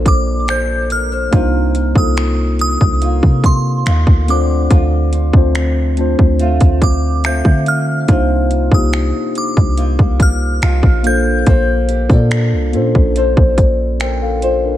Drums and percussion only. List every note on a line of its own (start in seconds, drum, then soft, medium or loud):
0.06 kick medium
0.06 closed hi-hat medium
0.48 finger snap loud
0.48 closed hi-hat medium
0.90 closed hi-hat medium
1.33 kick loud
1.33 closed hi-hat medium
1.75 closed hi-hat medium
1.95 kick medium
2.17 finger snap loud
2.17 closed hi-hat medium
2.59 closed hi-hat medium
2.81 kick medium
3.02 closed hi-hat medium
3.23 kick medium
3.44 kick medium
3.44 closed hi-hat medium
3.86 finger snap loud
3.86 closed hi-hat medium
4.07 kick medium
4.28 closed hi-hat medium
4.71 kick loud
4.71 closed hi-hat medium
5.13 closed hi-hat medium
5.33 kick loud
5.55 finger snap loud
5.55 closed hi-hat medium
5.97 closed hi-hat medium
6.19 kick medium
6.39 closed hi-hat soft
6.61 kick medium
6.61 closed hi-hat medium
6.82 kick medium
6.82 closed hi-hat medium
7.24 finger snap loud
7.24 closed hi-hat medium
7.45 kick medium
7.66 closed hi-hat medium
8.08 kick loud
8.08 closed hi-hat medium
8.51 closed hi-hat medium
8.71 kick medium
8.93 finger snap loud
8.93 closed hi-hat medium
9.35 closed hi-hat soft
9.57 kick medium
9.78 closed hi-hat medium
9.99 kick medium
10.20 kick medium
10.20 closed hi-hat medium
10.62 finger snap loud
10.62 closed hi-hat medium
10.83 kick medium
11.04 closed hi-hat medium
11.46 kick loud
11.46 closed hi-hat medium
11.89 closed hi-hat medium
12.10 kick loud
12.31 finger snap loud
12.31 closed hi-hat medium
12.73 closed hi-hat soft
12.95 kick medium
13.16 closed hi-hat medium
13.37 kick medium
13.58 kick medium
13.58 closed hi-hat medium
14.00 finger snap loud
14.00 closed hi-hat medium
14.42 closed hi-hat medium